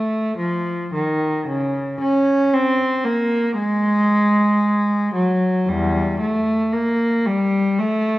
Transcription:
0.00 0.39 A3 medium
0.38 0.90 F3 medium
0.94 1.49 D#3 medium
1.48 2.01 C#3 medium
2.01 2.54 C#4 medium
2.53 3.07 C4 medium
3.04 3.59 A#3 medium
3.58 5.13 G#3 medium
5.15 5.68 F#3 medium
5.67 6.17 E2 medium
5.67 6.22 G3 medium
6.20 6.72 A3 medium
6.73 7.26 A#3 medium
7.26 7.79 G3 medium
7.79 8.19 A3 medium

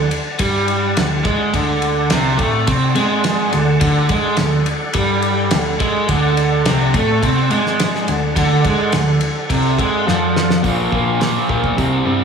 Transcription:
0.00 1.52 D5 medium
0.00 1.52 F#5 medium
0.00 1.51 A5 medium
0.11 ride medium
0.39 0.93 G2 medium
0.39 0.96 G3 medium
0.39 kick loud
0.39 ride loud
0.68 ride medium
0.97 1.23 D2 medium
0.97 1.20 D3 medium
0.97 snare loud
0.97 ride medium
1.25 1.52 G#2 medium
1.25 1.53 G#3 medium
1.25 kick loud
1.25 ride medium
1.54 2.07 D2 medium
1.54 2.10 D3 loud
1.54 3.80 D5 medium
1.54 3.80 F#5 medium
1.54 3.80 A5 medium
1.54 kick medium
1.54 ride medium
1.82 ride medium
2.10 2.37 C2 medium
2.10 2.38 C3 loud
2.10 snare loud
2.10 ride medium
2.38 2.66 A2 medium
2.38 2.66 A3 loud
2.38 kick loud
2.38 ride medium
2.67 2.94 C3 loud
2.67 2.95 C4 loud
2.67 kick loud
2.67 ride medium
2.95 3.49 G#2 medium
2.95 3.52 G#3 loud
2.95 ride medium
3.24 snare loud
3.24 ride loud
3.53 3.80 D2 medium
3.53 3.76 D3 medium
3.53 ride medium
3.80 4.08 D2 medium
3.80 4.09 D3 loud
3.80 6.08 A4 medium
3.80 6.08 D5 medium
3.80 6.08 F#5 medium
3.80 kick medium
3.80 ride medium
4.09 4.36 G#2 medium
4.09 4.38 G#3 loud
4.09 kick loud
4.09 ride medium
4.37 4.65 D2 medium
4.37 4.61 D3 medium
4.37 snare loud
4.37 ride medium
4.66 ride medium
4.93 5.48 G2 loud
4.93 5.51 G3 medium
4.93 kick loud
4.93 ride medium
5.22 ride medium
5.51 5.79 D2 medium
5.51 5.75 D3 medium
5.51 snare loud
5.51 ride medium
5.80 6.07 G#2 medium
5.80 6.08 G#3 medium
5.80 kick loud
5.80 ride medium
6.08 6.62 D2 medium
6.08 6.65 D3 loud
6.08 8.35 D5 medium
6.08 8.34 F#5 medium
6.08 8.35 A5 medium
6.08 kick medium
6.08 ride medium
6.37 ride medium
6.65 6.92 C2 loud
6.65 6.93 C3 loud
6.65 snare loud
6.65 ride medium
6.94 7.20 A2 medium
6.94 7.22 A3 medium
6.94 kick loud
6.94 ride medium
7.23 7.49 C3 loud
7.23 7.50 C4 loud
7.23 kick loud
7.23 ride medium
7.51 8.04 G#2 medium
7.51 8.07 G#3 loud
7.51 ride medium
7.66 snare soft
7.80 snare loud
7.80 ride medium
7.95 snare soft
8.08 8.35 D2 medium
8.08 8.31 D3 medium
8.08 ride medium
8.36 8.63 D2 medium
8.36 8.64 D3 loud
8.36 10.62 A4 medium
8.36 10.62 D5 medium
8.36 10.62 F#5 medium
8.36 kick medium
8.36 ride medium
8.64 8.91 G#2 medium
8.64 8.93 G#3 loud
8.64 kick loud
8.64 ride medium
8.92 9.20 D2 medium
8.92 9.17 D3 medium
8.92 snare loud
8.92 ride medium
9.21 ride medium
9.50 9.77 C2 medium
9.50 9.78 C3 medium
9.50 kick loud
9.50 ride medium
9.78 10.05 G#2 medium
9.78 10.06 G#3 medium
9.78 kick loud
9.78 ride medium
10.06 10.60 F2 medium
10.06 10.62 F3 loud
10.06 snare medium
10.36 snare medium
10.50 snare medium
10.63 10.86 A#1 medium
10.63 10.90 A#2 medium
10.63 10.91 F3 medium
10.63 10.91 A#3 medium
10.63 kick medium
10.63 open hi-hat soft
10.92 11.19 A#2 medium
10.92 11.37 A#2 medium
10.92 11.19 F3 medium
10.92 11.20 A#3 medium
10.92 kick medium
11.20 11.48 A#2 medium
11.20 11.48 F3 medium
11.20 11.49 A#3 medium
11.20 snare loud
11.20 open hi-hat soft
11.49 11.61 A#1 medium
11.49 11.76 A#2 medium
11.49 11.76 F3 medium
11.49 11.77 A#3 medium
11.49 kick medium
11.64 11.75 B1 medium
11.64 kick medium
11.77 12.00 C2 medium
11.77 12.04 C3 medium
11.77 12.05 G3 medium
11.77 12.05 C4 loud
11.77 kick medium
11.77 open hi-hat soft
12.05 12.24 G2 medium
12.05 12.24 C3 medium
12.05 12.24 G3 medium
12.05 12.24 C4 medium

